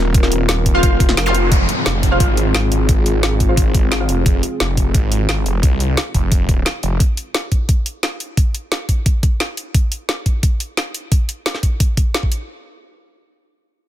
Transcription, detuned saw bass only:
0.00 0.82 D#1 loud
0.83 1.16 F1 medium
1.17 1.50 F1 medium
1.52 1.67 F1 loud
1.86 2.19 F1 medium
2.20 2.70 G#1 medium
2.72 4.07 G#1 loud
4.09 4.25 F1 loud
4.26 4.42 F1 loud
4.60 4.93 F1 loud
4.95 5.45 G#1 medium
5.46 5.62 F1 medium
5.63 5.96 C2 loud
6.15 6.65 F1 loud
6.83 6.99 F1 loud

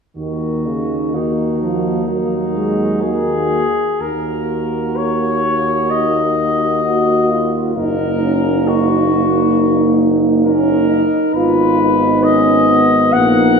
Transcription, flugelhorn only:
0.17 1.16 F#4 soft
1.14 2.08 D#4 soft
2.08 3.00 D#4 medium
3.02 4.03 G#4 medium
4.01 4.98 A#4 medium
4.96 5.92 C#5 medium
5.90 7.59 D#5 medium
7.76 8.69 A#4 medium
8.68 10.01 F#4 medium
10.45 11.31 A#4 medium
11.35 12.25 B4 medium
12.23 13.14 D#5 medium
13.13 13.60 F#5 medium

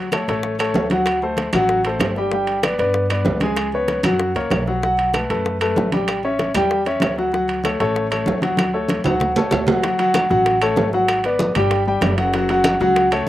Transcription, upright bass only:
0.00 0.23 D2 medium
0.28 0.72 A1 medium
0.75 1.48 D2 medium
1.54 1.97 A1 medium
2.00 2.73 G1 medium
2.79 3.23 G2 medium
3.26 3.99 C#2 medium
4.04 4.33 F#2 loud
4.36 4.50 C#2 medium
4.51 5.24 B1 medium
5.30 5.73 F#2 loud
5.76 6.49 A1 medium
6.55 6.99 E2 medium
7.02 7.74 D2 medium
7.80 8.24 A1 loud
8.27 9.00 D2 medium
9.06 9.35 D2 medium
9.36 9.51 C#2 medium
9.52 10.25 D2 medium
10.31 10.74 A1 loud
10.78 11.50 G#1 medium
11.56 11.99 G1 loud
12.02 12.75 F#1 medium
12.80 13.24 C#2 loud

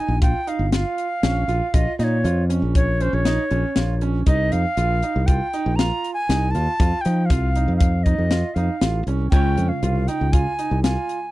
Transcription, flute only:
0.00 0.22 G#5 medium
0.22 0.50 G5 medium
0.48 0.73 F5 medium
0.74 1.76 F5 medium
1.74 1.98 D#5 medium
1.99 2.05 D#5 medium
2.04 2.44 C#5 medium
2.75 3.03 C#5 medium
3.02 3.16 C5 medium
3.14 4.02 C#5 medium
4.27 4.53 D#5 medium
4.52 5.28 F5 medium
5.26 5.77 G5 medium
5.76 6.13 A#5 medium
6.14 6.52 G#5 medium
6.51 7.03 A5 loud
7.01 7.27 G5 medium
7.26 7.76 F5 medium
7.77 8.05 F5 medium
8.03 8.56 D#5 medium
8.54 9.04 F5 medium
9.31 9.70 G5 medium
9.69 10.09 F5 medium
10.08 10.34 G5 medium
10.32 10.83 G#5 medium
10.83 11.31 G#5 medium

